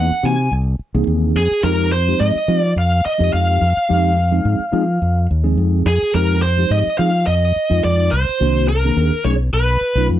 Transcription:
0.00 0.25 F#5 medium
0.11 muted fingered electric bass stroke soft
0.23 0.48 C3 medium
0.23 0.33 E3 medium
0.23 0.33 A#3 medium
0.23 0.33 C4 medium
0.23 0.33 D#4 medium
0.23 0.33 F#4 medium
0.23 0.51 G#5 medium
0.51 0.76 C2 medium
0.79 muted fingered electric bass stroke soft
0.94 1.06 C2 medium
0.94 1.36 E3 medium
0.94 1.36 A#3 medium
0.94 1.36 C4 medium
0.94 1.36 D#4 medium
0.94 1.36 G#4 medium
1.07 1.32 D#2 medium
1.35 1.49 F2 medium
1.35 1.64 G#4 medium
1.51 muted fingered electric bass stroke soft
1.63 2.13 F2 medium
1.63 1.90 F3 medium
1.63 1.91 G#3 medium
1.63 1.90 C4 medium
1.63 1.91 D#4 medium
1.63 1.90 G4 medium
1.63 1.92 A#4 medium
1.92 2.21 C5 medium
2.07 2.33 F3 medium
2.07 2.34 G#3 medium
2.07 2.34 C4 medium
2.07 2.34 D#4 medium
2.07 2.34 G4 medium
2.20 2.34 G#2 medium
2.20 2.58 D#5 medium
2.36 muted fingered electric bass stroke soft
2.48 2.58 F3 medium
2.48 2.73 F3 medium
2.48 2.58 G#3 medium
2.48 2.58 C4 medium
2.48 2.58 D#4 medium
2.48 2.58 G4 medium
2.58 2.72 D5 medium
2.63 2.69 D#4 soft
2.63 2.70 G#4 soft
2.76 3.01 F2 medium
2.76 3.05 F5 medium
3.05 3.33 D#5 medium
3.05 muted fingered electric bass stroke soft
3.18 3.31 F2 medium
3.18 3.62 F3 medium
3.18 3.62 G#3 medium
3.18 3.62 C4 medium
3.18 3.62 D#4 medium
3.18 3.62 G4 medium
3.33 3.58 F2 medium
3.33 5.26 F5 medium
3.62 3.75 F2 medium
3.77 muted fingered electric bass stroke soft
3.89 4.39 F2 medium
3.89 4.15 F3 medium
3.89 4.15 G#3 medium
3.89 4.15 C4 medium
3.89 4.16 D#4 medium
3.89 4.16 G4 medium
4.32 4.58 F3 medium
4.32 4.58 G#3 medium
4.32 4.58 C4 medium
4.32 4.58 D#4 medium
4.32 4.58 G#4 medium
4.45 4.58 G#2 medium
4.59 muted fingered electric bass stroke soft
4.72 4.82 F3 loud
4.72 4.98 F3 medium
4.72 4.82 G#3 medium
4.72 4.83 C4 medium
4.72 4.82 D#4 medium
4.72 4.83 G#4 loud
4.88 4.94 D#4 soft
4.88 4.94 A#4 soft
5.02 5.26 F2 medium
5.31 5.56 D#2 medium
5.44 5.85 F3 medium
5.44 5.85 G#3 medium
5.44 5.85 C4 medium
5.44 5.85 D#4 medium
5.44 5.85 G#4 medium
5.57 5.83 F2 medium
5.86 5.99 F2 medium
5.86 6.15 G#4 medium
6.02 muted fingered electric bass stroke soft
6.14 6.63 F2 medium
6.14 6.41 F3 medium
6.14 6.41 G#3 medium
6.14 6.41 C4 medium
6.14 6.41 D#4 medium
6.14 6.41 G4 medium
6.14 6.41 A#4 medium
6.42 6.71 C5 medium
6.57 6.84 F3 medium
6.57 6.84 G#3 medium
6.57 6.84 C4 medium
6.57 6.84 D#4 medium
6.57 6.84 G4 medium
6.70 6.84 G#2 medium
6.70 6.98 D#5 medium
6.87 muted fingered electric bass stroke soft
6.98 7.09 F3 medium
6.98 7.24 F3 medium
6.98 7.09 G#3 medium
6.98 7.09 C4 medium
6.98 7.09 D#4 medium
6.98 7.09 G#4 medium
6.98 7.26 F5 medium
7.27 7.52 F2 medium
7.27 7.84 D#5 medium
7.56 muted fingered electric bass stroke soft
7.69 7.82 F2 medium
7.69 8.11 F3 medium
7.69 8.11 G#3 medium
7.69 8.11 C4 medium
7.69 8.11 D#4 medium
7.69 8.12 F4 medium
7.84 8.09 F2 medium
7.84 8.13 D5 medium
8.11 8.26 C2 medium
8.11 8.68 C5 medium
8.40 8.90 C2 medium
8.40 8.67 D#3 medium
8.40 8.67 A#3 medium
8.40 8.67 C4 medium
8.40 8.67 D4 medium
8.40 8.67 F#4 loud
8.68 9.27 A#4 medium
8.84 9.10 D#3 medium
8.84 9.10 A#3 medium
8.84 9.10 C4 medium
8.84 9.10 D4 medium
8.84 9.10 G#4 medium
8.97 9.10 D#2 medium
9.24 9.49 B1 medium
9.24 9.34 F#3 medium
9.24 9.34 A3 medium
9.24 9.34 C#4 medium
9.24 9.34 D#4 medium
9.24 9.35 G#4 loud
9.24 9.32 C#5 medium
9.53 9.78 B1 medium
9.53 10.06 B4 medium
9.81 muted fingered electric bass stroke soft
9.95 10.07 B1 medium
9.95 10.20 F#3 medium
9.95 10.20 A3 medium
9.95 10.20 C#4 medium
9.95 10.20 D#4 medium
9.95 10.20 F4 medium
10.09 10.20 F2 medium

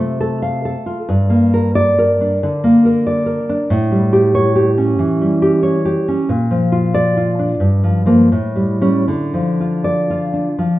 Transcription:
0.00 0.75 C3 medium
0.00 0.97 A3 medium
0.00 0.54 F4 medium
0.00 0.19 A4 medium
0.21 0.64 A4 medium
0.42 1.08 F5 medium
0.65 1.08 A4 medium
0.86 1.08 F4 medium
1.09 2.39 G2 medium
1.30 2.31 A#3 medium
1.54 1.75 A#4 medium
1.75 2.11 D5 loud
1.99 2.84 A#4 medium
2.21 3.17 D4 medium
2.43 3.39 D3 medium
2.64 3.60 A#3 medium
2.85 3.25 A#4 medium
3.07 3.71 D5 medium
3.26 3.70 A#4 medium
3.49 3.71 D4 medium
3.70 4.95 A2 medium
3.91 4.88 G3 medium
4.13 4.54 G4 medium
4.35 4.69 C#5 medium
4.56 5.41 G4 medium
4.78 5.76 C#4 medium
4.99 5.97 E3 medium
5.21 6.19 G3 medium
5.42 5.84 G4 medium
5.63 6.29 C#5 medium
5.85 6.29 G4 medium
6.08 6.30 C#4 medium
6.29 7.57 A#2 medium
6.51 7.50 F3 medium
6.72 7.16 F4 medium
6.94 7.30 D5 loud
7.17 7.61 F4 medium
7.39 7.61 D4 medium
7.60 8.28 G2 medium
7.84 8.05 F3 medium
8.06 8.28 F3 medium
8.06 8.28 A#3 medium
8.32 9.05 A2 medium
8.56 8.80 G3 medium
8.81 9.04 G3 medium
8.81 9.05 C#4 medium
9.08 10.55 D3 medium
9.34 10.46 F3 medium
9.60 10.09 F4 medium
9.84 10.24 D5 medium
10.10 10.79 F4 medium
10.34 10.79 D4 medium
10.59 10.79 F3 medium

